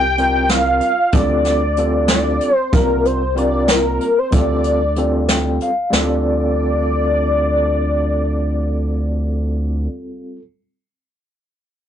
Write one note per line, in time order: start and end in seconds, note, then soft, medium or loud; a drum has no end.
0.00 0.81 C2 medium
0.00 0.52 G5 loud
0.18 0.90 G3 medium
0.18 0.90 C4 medium
0.18 0.90 F4 medium
0.18 0.91 A#4 medium
0.18 closed hi-hat medium
0.49 1.15 F5 loud
0.49 snare medium
0.49 closed hi-hat medium
0.81 closed hi-hat medium
1.12 2.40 D2 loud
1.12 1.61 G3 medium
1.12 1.62 C4 medium
1.12 1.62 F4 medium
1.12 1.62 A4 medium
1.12 2.10 D5 loud
1.12 kick loud
1.12 closed hi-hat medium
1.45 snare soft
1.45 closed hi-hat medium
1.77 2.49 G3 medium
1.77 2.49 C4 medium
1.77 2.50 F4 medium
1.77 2.50 A4 medium
1.77 closed hi-hat medium
2.08 2.55 D5 loud
2.08 snare medium
2.08 closed hi-hat medium
2.41 closed hi-hat medium
2.55 2.75 C5 loud
2.72 3.99 C2 medium
2.72 3.21 G3 medium
2.72 3.21 C4 medium
2.72 3.21 F4 medium
2.72 3.07 A#4 medium
2.72 3.21 A#4 medium
2.72 kick loud
2.72 closed hi-hat medium
3.05 3.40 C5 medium
3.05 closed hi-hat medium
3.35 4.08 G3 medium
3.35 4.08 C4 medium
3.35 4.08 F4 medium
3.35 4.09 A#4 medium
3.35 3.72 D5 loud
3.35 closed hi-hat medium
3.68 4.20 A#4 medium
3.68 snare medium
3.68 closed hi-hat medium
4.01 closed hi-hat medium
4.19 4.33 C5 medium
4.31 5.59 D2 loud
4.31 4.80 G3 medium
4.31 4.80 C4 medium
4.31 4.81 F4 medium
4.31 4.81 A4 medium
4.31 5.57 D5 medium
4.31 kick loud
4.31 closed hi-hat medium
4.64 closed hi-hat medium
4.96 5.68 G3 medium
4.96 5.69 C4 medium
4.96 5.69 F4 medium
4.96 5.69 A4 medium
4.96 closed hi-hat medium
5.29 5.59 G5 medium
5.29 snare medium
5.29 closed hi-hat medium
5.60 5.91 F5 medium
5.60 closed hi-hat medium
5.91 9.88 D2 medium
5.91 10.36 G3 medium
5.91 10.37 C4 medium
5.91 10.39 F4 medium
5.91 9.88 D5 medium
5.91 snare medium
5.96 10.41 A4 medium